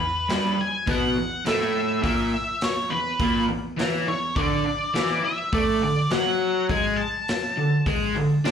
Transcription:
Already playing: B4
0.01 muted overdriven electric guitar stroke
0.29 G2 G3, snare, open hi-hat
0.58 G#5, muted overdriven electric guitar stroke
0.87 B2 B3, kick, open hi-hat
0.91 F#5
1.17 E2
1.46 A2 A3 E5, snare, open hi-hat
2.03 A#2 A#3 E5, kick, open hi-hat
2.61 C#5, snare, open hi-hat
2.90 E2 B4
3.20 A#2 A#3, kick, open hi-hat
3.49 E2
3.77 E3 E4, snare, open hi-hat
4.07 E2 C#5
4.36 D3 D4 D5, kick, open hi-hat
4.66 muted overdriven electric guitar stroke
4.94 E3 E4, snare, open hi-hat
5.24 E5, muted overdriven electric guitar stroke
5.53 A3 A4 D5, kick, open hi-hat
5.82 D3
6.11 F#3 F#4 F#5, snare, open hi-hat
6.69 G#3 G#4 G#5, kick, open hi-hat
6.97 A5
7.28 snare, open hi-hat
7.57 D3
7.86 G#3 G#4, kick, open hi-hat
8.15 D3
8.45 D4 D5, snare, open hi-hat

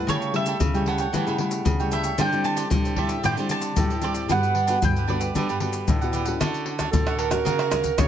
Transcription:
Already playing: G3 A3 E4
0.07 C#3 E4 A4 C#5 G5, pandeiro, maracas, surdo
0.22 pandeiro, maracas
0.33 G3 A3 E4 A4 C#5 E5 G5, pandeiro
0.46 E4 A4 C#5 G5, pandeiro, maracas
0.59 C#3, pandeiro, maracas, surdo
0.73 G3 A3 E4 A4 C#5 G5, pandeiro, maracas
0.86 E4 A4 C#5 F#5 G5, pandeiro
0.98 A4 C#5 G5, pandeiro, maracas
1.12 C#3 E3 G3 A3 E4 A4 C#5, pandeiro, maracas, surdo
1.17 G5
1.27 C#3 E4 A4 C#5 G5, pandeiro, maracas
1.38 G3 A3 E4 A4 C#5, pandeiro
1.51 pandeiro, maracas
1.65 C#3, pandeiro, maracas, surdo
1.79 G3 A3 E4 A4 C#5 G5, pandeiro, maracas
1.91 E4 A4 C#5 E5 G5, pandeiro, maracas
2.04 A4 C#5 G5, pandeiro, maracas
2.18 D3 G3 C4 D4 E4 G4 C5 D5 G5, pandeiro, maracas, surdo
2.32 G3 C4 E4, pandeiro, maracas
2.44 D4 G4 C5 D5 A5, pandeiro, maracas
2.56 D4 G4 C5 D5, pandeiro, maracas
2.70 A2 D3 G3 C4 E4, pandeiro, maracas, surdo
2.84 G4 C5 D5, pandeiro, maracas
2.96 G3 C4 D4 E4 G4 C5 D5 E5, pandeiro, surdo
3.09 G4 C5 D5, pandeiro, maracas
3.23 A2 D3 D4 G4 C5 D5 G5, pandeiro, maracas, surdo
3.37 D3 G3 C4 D4 E4 G4 C5 D5, pandeiro, maracas
3.49 D4 G4 C5 D5 A5, pandeiro, maracas
3.62 pandeiro, maracas
3.76 A2 G3 C4 E4, pandeiro, maracas, surdo
3.90 G4 C5 D5, pandeiro, maracas
4.02 G3 C4 D4 E4 G4 C5 D5, pandeiro, maracas
4.14 G4 C5 D5, pandeiro, maracas
4.28 G2 G3 B3 D4 F#4 G4 A4 B4 F#5, pandeiro, maracas, surdo
4.43 pandeiro, maracas
4.55 D4 G4 B4 F#5, pandeiro
4.67 B3 D4 F#4 G4 A4 B4 F#5, pandeiro, maracas
4.82 G2 D3 G5, pandeiro, maracas, surdo
4.96 G4 B4 F#5, pandeiro, maracas
5.08 B3 D4 F#4 G4 A4 B4 D5 F#5, pandeiro
5.20 G4 B4 F#5, pandeiro, maracas
5.35 D3 G3 B3 D4 F#4 G4 A4 B4 F#5, pandeiro, maracas, surdo
5.49 G2 D4 G4 B4 F#5, pandeiro, maracas
5.60 B3 D4 F#4 G4 A4 B4 F#5, pandeiro
5.73 pandeiro, maracas
5.88 A2 D3, pandeiro, maracas, surdo
6.01 B3 F#4 G4 A4 B4 F#5, pandeiro, maracas
6.13 D4 G4 B4 F#5, pandeiro, maracas
6.25 C#4 F#4 G4 A4 B4 F#5, pandeiro, maracas
6.40 D3 D4 A4 C#5 F#5, pandeiro, tamborim, maracas, surdo
6.54 pandeiro, maracas
6.66 D4 A4 C#5 F#5, pandeiro
6.79 C#4 D4 F#4 A4 C#5 F#5, pandeiro, tamborim, maracas, surdo
6.91 A2 D3 A4, pandeiro, maracas, surdo
7.07 A4 C#5 F#5, pandeiro, tamborim, maracas
7.18 D4 A4 A#4 C#5 F#5, pandeiro
7.31 C#4 F#4 A4 A#4 C#5 F#5, pandeiro, tamborim, maracas, surdo
7.45 C#3 F#4 A#4 C#5 F#5, pandeiro, maracas, surdo
7.59 F#4 A#4 C#5 F#5, pandeiro, tamborim, maracas
7.70 C#4 F#4 A#4 C#5 F#5, pandeiro, tamborim, maracas, surdo
7.84 pandeiro, maracas, surdo
7.98 C#3 C#4 F#4 A#4 C#5, pandeiro, tamborim, maracas, surdo

